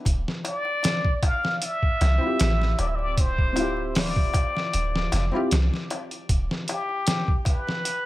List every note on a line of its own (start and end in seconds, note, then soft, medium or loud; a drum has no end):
0.05 0.25 D1 medium
0.05 kick loud
0.05 closed hi-hat medium
0.05 darbuka tek medium
0.28 snare soft
0.45 1.27 D5 loud
0.45 closed hi-hat medium
0.45 darbuka tek medium
0.65 darbuka tek soft
0.83 snare loud
0.83 closed hi-hat medium
0.83 darbuka tek medium
1.05 kick medium
1.23 1.66 F5 loud
1.23 kick medium
1.23 closed hi-hat medium
1.23 darbuka tek medium
1.44 snare soft
1.44 darbuka tek soft
1.62 2.80 E5 loud
1.62 closed hi-hat medium
1.62 darbuka tek soft
1.83 kick medium
2.01 2.19 C2 medium
2.01 snare soft
2.01 closed hi-hat medium
2.01 darbuka tek medium
2.18 3.51 C4 medium
2.18 3.52 E4 medium
2.23 3.53 F4 medium
2.23 3.55 G4 medium
2.23 darbuka tek soft
2.40 2.75 A1 medium
2.40 snare loud
2.40 closed hi-hat medium
2.40 darbuka tek soft
2.62 snare soft
2.79 4.31 D1 medium
2.79 2.89 D5 medium
2.79 closed hi-hat medium
2.79 darbuka tek medium
2.88 2.97 E5 medium
2.96 3.22 D5 medium
2.96 darbuka tek soft
3.17 3.97 C5 medium
3.17 kick loud
3.17 closed hi-hat medium
3.17 darbuka tek medium
3.38 kick medium
3.53 5.26 C4 medium
3.53 5.28 E4 medium
3.53 closed hi-hat medium
3.53 darbuka tek medium
3.59 5.29 F4 medium
3.59 5.31 G4 medium
3.77 darbuka tek soft
3.95 5.48 D5 medium
3.95 snare loud
3.95 open hi-hat medium
3.95 darbuka tek medium
4.16 kick medium
4.34 kick medium
4.34 closed hi-hat medium
4.34 darbuka tek medium
4.55 snare soft
4.55 darbuka tek soft
4.73 5.09 D1 medium
4.73 closed hi-hat medium
4.73 darbuka tek soft
4.96 snare medium
5.12 5.31 F1 loud
5.12 snare soft
5.12 closed hi-hat medium
5.12 darbuka tek medium
5.32 5.50 C4 medium
5.32 5.51 E4 medium
5.32 5.52 F4 medium
5.32 darbuka tek soft
5.36 5.52 G4 medium
5.51 5.70 C2 medium
5.51 snare loud
5.51 closed hi-hat medium
5.51 darbuka tek soft
5.74 snare soft
5.90 closed hi-hat medium
5.90 darbuka tek medium
6.11 closed hi-hat soft
6.11 darbuka tek soft
6.29 6.48 D1 medium
6.29 kick loud
6.29 closed hi-hat medium
6.29 darbuka tek soft
6.51 snare soft
6.68 7.43 G4 medium
6.68 closed hi-hat medium
6.68 darbuka tek medium
6.89 darbuka tek soft
7.07 snare loud
7.07 closed hi-hat medium
7.07 darbuka tek soft
7.28 kick medium
7.45 8.06 B4 loud
7.45 kick medium
7.45 closed hi-hat medium
7.45 darbuka tek medium
7.67 snare soft
7.67 darbuka tek soft
7.85 closed hi-hat medium
7.85 darbuka tek soft